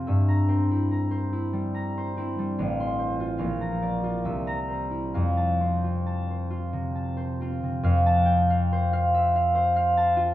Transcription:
<<
  \new Staff \with { instrumentName = "Harp" } { \time 3/4 \key f \major \tempo 4 = 70 << { r16 bes''2~ bes''8. | r16 c'''8. r16 bes''4 bes''8. | r16 a''2~ a''8.~ | a''16 a''2~ a''8. | } \\ { <c'' e''>8 c''16 e'16 bes''16 c''16 e'16 g16 bes''16 c''16 e'16 g16 | f''8 c''16 f'16 f''8 d''16 f'16 e''8 c''16 e'16 | f''8 c''16 f'16 a''16 c''16 f'16 c16 a''16 c''16 f'16 c16 | f''8 g''16 f''16 c''16 f''16 e''16 f''16 c''16 f''16 a''16 f'16 | } >> }
  \new Staff \with { instrumentName = "Harp" } { \clef bass \time 3/4 \key f \major <g, c'>8 c'2 c'8 | a,,4 bes,,4 c,4 | f,8 c'2 c'8 | f,2. | }
>>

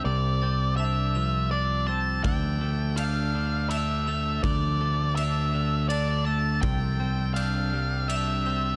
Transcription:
<<
  \new Staff \with { instrumentName = "Glockenspiel" } { \time 3/4 \key d \minor \tempo 4 = 82 f''''8 a'''8 f''''8 f''''8 a'''8 e'''8 | a'''4 g'''4 f''''8 f''''8~ | f''''8 a'''8 f''''8 f''''8 a'''8 e'''8 | a'''4 g'''4 f''''8 f''''8 | }
  \new Staff \with { instrumentName = "Lead electric guitar" } { \time 3/4 \key d \minor d''4 e''4 d''8 a''8 | g''4 f''4 e''4 | d''4 e''4 d''8 a''8 | g''4 f''4 e''4 | }
  \new Staff \with { instrumentName = "Clean electric guitar" } { \time 3/4 \key d \minor c8 c'8 d'8 f8 d'8 c'8 | d8 a8 d'8 d8 d'8 a8 | d8 a8 d'8 d8 d'8 a8 | c8 c'8 d'8 g8 d'8 c'8 | }
  \new Staff \with { instrumentName = "Fingered electric bass" } { \clef bass \time 3/4 \key d \minor c,2. | d,2. | d,2. | c,2. | }
  \new DrumStaff \with { instrumentName = "Drums" } \drummode { \time 3/4 r4 r4 r4 | <bd cymr>4 cymr4 cymr4 | <bd cymr>4 cymr4 cymr4 | <bd cymr>4 cymr4 cymr4 | }
>>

